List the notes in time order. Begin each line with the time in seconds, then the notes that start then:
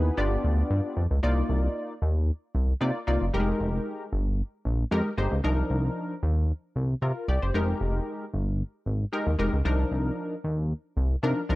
Already playing: D#2 B3 D#4 E4 G#4 B4
0.17 G1 B3 D4 F4 G4 D5
0.44 D2
0.70 G2
0.97 F2
1.11 C#2
1.23 C2 A#3 D#4 F4 D5
1.49 C2
2.02 D#2
2.55 C2
2.81 C3 A#3 D#4 F4 D5
3.07 C2 A#3 D#4 F4 D5
3.22 F#1
3.33 F1 G3 D#4 G4 A#4
3.40 G#3
3.60 F1
4.13 G1
4.65 A#1
4.91 F2 G#3 D#4 G4 A#4
5.17 G1 G#3 D#4 G4 C5
5.32 C#2
5.44 C2 F3 D4 D#4 A#4
5.70 C2
6.23 D#2
6.76 C2
7.02 C3 F4 A#4
7.28 C2 G4 D5
7.42 F#1 G4 C5
7.54 F1 G#3 D#4 G4 A#4
7.81 F1
8.34 G1
8.86 G#1
9.12 G#3 D#4 G4 A#4
9.27 D#2
9.39 F1 G#3 D#4 G4 A#4
9.53 C#2
9.65 C2 F3 D4 D#4 A#4
9.91 C2
10.44 D#2
10.97 C2
11.23 C3 F3 D4 D#4 A#4
11.49 C2 F3 D4 D#4 A#4